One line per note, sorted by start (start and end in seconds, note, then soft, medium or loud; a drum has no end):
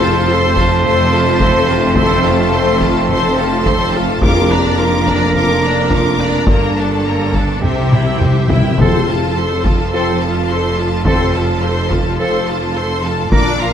0.00 4.18 F1 loud
0.00 0.53 F2 loud
0.00 4.18 F2 loud
0.00 4.18 A3 loud
0.00 4.22 C4 medium
0.00 0.29 F4 medium
0.00 0.29 A4 medium
0.00 3.90 C5 medium
0.00 0.29 A5 medium
0.29 0.57 A4 medium
0.29 0.57 C5 medium
0.29 0.57 C6 medium
0.56 0.85 F4 medium
0.56 0.84 A4 medium
0.56 0.86 A5 medium
0.56 taiko medium
0.83 1.11 A4 medium
0.83 1.10 C5 medium
0.83 1.12 C6 medium
0.83 taiko low-mid medium
1.12 1.41 F4 medium
1.12 1.40 A4 medium
1.12 1.42 A5 medium
1.40 1.69 A4 medium
1.40 1.69 C5 medium
1.40 1.69 C6 medium
1.40 taiko loud
1.68 1.97 F4 medium
1.68 1.97 A4 medium
1.68 1.97 A5 medium
1.96 2.23 A4 medium
1.96 2.23 C5 medium
1.96 2.23 C6 medium
1.96 taiko loud
2.24 2.53 F4 medium
2.24 2.53 A4 medium
2.24 2.53 A5 medium
2.53 2.81 A4 medium
2.53 2.82 C5 medium
2.53 2.82 C6 medium
2.80 3.09 F4 medium
2.80 3.10 A4 medium
2.80 3.09 A5 medium
2.80 taiko medium
3.09 3.36 A4 medium
3.09 3.36 C5 medium
3.09 3.36 C6 medium
3.09 taiko low-mid medium
3.36 3.66 F4 medium
3.36 3.67 A4 medium
3.36 3.65 A5 medium
3.66 3.94 A4 medium
3.66 3.95 C5 medium
3.66 3.94 C6 medium
3.66 taiko loud
3.92 4.22 F4 medium
3.92 4.21 A5 medium
3.97 4.24 A4 medium
4.21 6.44 F1 loud
4.21 6.44 F2 loud
4.21 5.03 F2 loud
4.21 7.46 A#3 medium
4.21 7.46 D4 medium
4.21 4.49 F4 medium
4.21 6.44 A#4 medium
4.21 4.49 A#4 medium
4.21 4.48 D6 medium
4.21 taiko loud
4.49 4.78 D4 medium
4.49 4.79 D5 medium
4.49 4.79 A#5 medium
4.49 taiko rim soft
4.77 5.07 F4 medium
4.77 5.07 A#4 medium
4.77 5.07 D6 medium
5.07 5.35 D4 medium
5.07 5.36 D5 medium
5.07 5.36 A#5 medium
5.07 taiko medium
5.33 5.60 F4 medium
5.33 5.62 A#4 medium
5.33 5.62 D6 medium
5.33 taiko low-mid medium
5.63 5.92 D4 medium
5.63 5.92 D5 medium
5.63 5.93 A#5 medium
5.91 6.19 F4 medium
5.91 6.20 A#4 medium
5.91 taiko medium
5.95 6.22 D6 medium
6.19 6.48 D4 medium
6.19 6.48 D5 medium
6.19 6.49 A#5 medium
6.19 taiko rim soft
6.47 7.61 G1 medium
6.47 7.61 G2 medium
6.47 6.75 A#3 medium
6.47 7.64 A4 medium
6.47 6.75 A#4 medium
6.47 6.76 A#5 medium
6.47 taiko loud
6.77 7.06 D4 medium
6.77 7.06 A4 medium
6.77 7.06 A5 medium
7.05 7.34 A#3 medium
7.05 7.35 A#4 medium
7.05 7.34 A#5 medium
7.34 7.64 D4 medium
7.34 7.64 A4 medium
7.34 7.64 A5 medium
7.34 taiko medium
7.62 8.59 C2 medium
7.62 8.58 C3 medium
7.62 7.69 C3 soft
7.62 8.49 C4 medium
7.62 8.51 E4 medium
7.62 8.50 G4 medium
7.62 7.90 G4 medium
7.62 7.91 C5 medium
7.62 7.91 E5 medium
7.62 taiko low-mid medium
7.71 7.78 C3 soft
7.79 7.86 C3 medium
7.87 7.93 C3 medium
7.92 8.00 C3 medium
7.92 8.21 E4 medium
7.92 8.22 E5 medium
7.92 8.22 G5 medium
7.92 taiko mid medium
8.02 8.08 C3 medium
8.09 8.16 C3 medium
8.17 8.23 C3 medium
8.17 8.49 G4 medium
8.21 8.32 C3 medium
8.21 8.51 C5 medium
8.21 8.51 E5 medium
8.21 taiko low-mid loud
8.33 8.38 C3 medium
8.40 8.46 C3 medium
8.48 8.54 C3 loud
8.48 8.79 E4 medium
8.48 8.80 G5 medium
8.48 taiko low loud
8.53 8.61 C3 loud
8.53 8.81 E5 medium
8.63 8.70 C3 loud
8.71 8.78 C3 loud
8.79 13.29 F1 medium
8.79 13.28 F2 medium
8.79 9.61 F2 loud
8.79 8.99 C4 medium
8.79 8.99 F4 medium
8.79 9.06 A4 medium
8.79 8.99 A4 medium
8.79 9.07 C5 medium
8.79 9.06 C6 medium
8.79 taiko loud
9.07 9.36 F4 medium
9.07 9.37 A4 medium
9.07 9.36 A5 medium
9.35 9.64 A4 medium
9.35 9.66 C5 medium
9.35 9.65 C6 medium
9.63 9.92 F4 medium
9.63 9.94 A4 medium
9.63 9.92 A5 medium
9.63 taiko medium
9.91 10.13 C4 medium
9.91 10.13 F4 medium
9.91 10.18 A4 medium
9.91 10.13 A4 medium
9.91 10.20 C5 medium
9.91 10.18 C6 medium
10.21 10.51 F4 medium
10.21 10.50 A4 medium
10.21 10.50 A5 medium
10.49 10.79 A4 medium
10.49 10.78 C5 medium
10.49 10.78 C6 medium
10.77 11.06 F4 medium
10.77 11.06 A4 medium
10.77 11.06 A5 medium
11.05 11.26 C4 medium
11.05 11.26 F4 medium
11.05 11.25 A4 medium
11.05 11.33 A4 medium
11.05 11.33 C5 medium
11.05 11.32 C6 medium
11.05 taiko loud
11.33 11.63 F4 medium
11.33 11.63 A4 medium
11.33 11.62 A5 medium
11.62 11.91 A4 medium
11.62 11.91 C5 medium
11.62 11.91 C6 medium
11.90 12.19 F4 medium
11.90 12.19 A4 medium
11.90 12.20 A5 medium
11.90 taiko medium
12.18 12.39 C4 medium
12.18 12.39 F4 medium
12.18 12.45 A4 medium
12.18 12.38 A4 medium
12.18 12.46 C5 medium
12.18 12.45 C6 medium
12.47 12.76 F4 medium
12.47 12.76 A4 medium
12.47 12.76 A5 medium
12.75 13.04 A4 medium
12.75 13.05 C5 medium
12.75 13.04 C6 medium
13.03 13.32 F4 medium
13.03 13.33 A4 medium
13.03 13.32 A5 medium
13.31 13.73 A#1 medium
13.31 13.73 A#2 medium
13.31 13.52 D4 medium
13.31 13.58 D4 medium
13.31 13.52 F4 medium
13.31 13.52 A#4 medium
13.31 13.59 D5 medium
13.31 13.58 D6 medium
13.31 taiko loud
13.59 13.73 F4 medium
13.59 13.73 F5 medium
13.59 13.73 A#5 medium